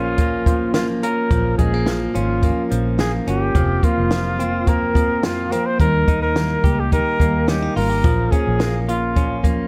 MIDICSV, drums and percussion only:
0, 0, Header, 1, 2, 480
1, 0, Start_track
1, 0, Tempo, 561272
1, 1119, Time_signature, 4, 2, 24, 8
1, 8275, End_track
2, 0, Start_track
2, 0, Title_t, "Drums"
2, 152, Note_on_c, 9, 42, 74
2, 157, Note_on_c, 9, 36, 72
2, 237, Note_off_c, 9, 42, 0
2, 242, Note_off_c, 9, 36, 0
2, 396, Note_on_c, 9, 36, 77
2, 401, Note_on_c, 9, 42, 62
2, 481, Note_off_c, 9, 36, 0
2, 486, Note_off_c, 9, 42, 0
2, 633, Note_on_c, 9, 38, 107
2, 634, Note_on_c, 9, 42, 78
2, 718, Note_off_c, 9, 38, 0
2, 719, Note_off_c, 9, 42, 0
2, 882, Note_on_c, 9, 42, 76
2, 968, Note_off_c, 9, 42, 0
2, 1118, Note_on_c, 9, 36, 104
2, 1120, Note_on_c, 9, 42, 83
2, 1204, Note_off_c, 9, 36, 0
2, 1205, Note_off_c, 9, 42, 0
2, 1357, Note_on_c, 9, 42, 59
2, 1358, Note_on_c, 9, 36, 65
2, 1442, Note_off_c, 9, 42, 0
2, 1443, Note_off_c, 9, 36, 0
2, 1595, Note_on_c, 9, 38, 98
2, 1599, Note_on_c, 9, 42, 79
2, 1680, Note_off_c, 9, 38, 0
2, 1685, Note_off_c, 9, 42, 0
2, 1841, Note_on_c, 9, 42, 60
2, 1927, Note_off_c, 9, 42, 0
2, 2076, Note_on_c, 9, 36, 72
2, 2076, Note_on_c, 9, 42, 73
2, 2161, Note_off_c, 9, 42, 0
2, 2162, Note_off_c, 9, 36, 0
2, 2321, Note_on_c, 9, 42, 66
2, 2407, Note_off_c, 9, 42, 0
2, 2556, Note_on_c, 9, 38, 100
2, 2557, Note_on_c, 9, 42, 78
2, 2641, Note_off_c, 9, 38, 0
2, 2642, Note_off_c, 9, 42, 0
2, 2801, Note_on_c, 9, 42, 77
2, 2886, Note_off_c, 9, 42, 0
2, 3036, Note_on_c, 9, 36, 98
2, 3037, Note_on_c, 9, 42, 78
2, 3121, Note_off_c, 9, 36, 0
2, 3122, Note_off_c, 9, 42, 0
2, 3276, Note_on_c, 9, 36, 71
2, 3279, Note_on_c, 9, 42, 62
2, 3362, Note_off_c, 9, 36, 0
2, 3364, Note_off_c, 9, 42, 0
2, 3514, Note_on_c, 9, 38, 106
2, 3518, Note_on_c, 9, 42, 83
2, 3599, Note_off_c, 9, 38, 0
2, 3603, Note_off_c, 9, 42, 0
2, 3762, Note_on_c, 9, 42, 61
2, 3848, Note_off_c, 9, 42, 0
2, 3995, Note_on_c, 9, 42, 74
2, 3996, Note_on_c, 9, 36, 74
2, 4081, Note_off_c, 9, 36, 0
2, 4081, Note_off_c, 9, 42, 0
2, 4235, Note_on_c, 9, 36, 71
2, 4244, Note_on_c, 9, 42, 70
2, 4321, Note_off_c, 9, 36, 0
2, 4329, Note_off_c, 9, 42, 0
2, 4476, Note_on_c, 9, 38, 108
2, 4477, Note_on_c, 9, 42, 80
2, 4561, Note_off_c, 9, 38, 0
2, 4562, Note_off_c, 9, 42, 0
2, 4722, Note_on_c, 9, 42, 77
2, 4808, Note_off_c, 9, 42, 0
2, 4957, Note_on_c, 9, 36, 99
2, 4959, Note_on_c, 9, 42, 90
2, 5042, Note_off_c, 9, 36, 0
2, 5045, Note_off_c, 9, 42, 0
2, 5198, Note_on_c, 9, 36, 75
2, 5200, Note_on_c, 9, 42, 56
2, 5283, Note_off_c, 9, 36, 0
2, 5285, Note_off_c, 9, 42, 0
2, 5439, Note_on_c, 9, 38, 110
2, 5443, Note_on_c, 9, 42, 83
2, 5524, Note_off_c, 9, 38, 0
2, 5529, Note_off_c, 9, 42, 0
2, 5677, Note_on_c, 9, 36, 90
2, 5688, Note_on_c, 9, 42, 61
2, 5763, Note_off_c, 9, 36, 0
2, 5774, Note_off_c, 9, 42, 0
2, 5920, Note_on_c, 9, 36, 73
2, 5921, Note_on_c, 9, 42, 70
2, 6005, Note_off_c, 9, 36, 0
2, 6006, Note_off_c, 9, 42, 0
2, 6156, Note_on_c, 9, 36, 68
2, 6165, Note_on_c, 9, 42, 66
2, 6242, Note_off_c, 9, 36, 0
2, 6251, Note_off_c, 9, 42, 0
2, 6397, Note_on_c, 9, 38, 99
2, 6398, Note_on_c, 9, 42, 85
2, 6483, Note_off_c, 9, 38, 0
2, 6484, Note_off_c, 9, 42, 0
2, 6644, Note_on_c, 9, 46, 73
2, 6730, Note_off_c, 9, 46, 0
2, 6878, Note_on_c, 9, 36, 103
2, 6878, Note_on_c, 9, 42, 90
2, 6963, Note_off_c, 9, 36, 0
2, 6963, Note_off_c, 9, 42, 0
2, 7118, Note_on_c, 9, 36, 69
2, 7118, Note_on_c, 9, 42, 57
2, 7203, Note_off_c, 9, 36, 0
2, 7203, Note_off_c, 9, 42, 0
2, 7354, Note_on_c, 9, 38, 106
2, 7359, Note_on_c, 9, 42, 77
2, 7440, Note_off_c, 9, 38, 0
2, 7444, Note_off_c, 9, 42, 0
2, 7601, Note_on_c, 9, 42, 60
2, 7687, Note_off_c, 9, 42, 0
2, 7836, Note_on_c, 9, 42, 73
2, 7837, Note_on_c, 9, 36, 72
2, 7921, Note_off_c, 9, 42, 0
2, 7923, Note_off_c, 9, 36, 0
2, 8074, Note_on_c, 9, 36, 73
2, 8077, Note_on_c, 9, 42, 69
2, 8159, Note_off_c, 9, 36, 0
2, 8162, Note_off_c, 9, 42, 0
2, 8275, End_track
0, 0, End_of_file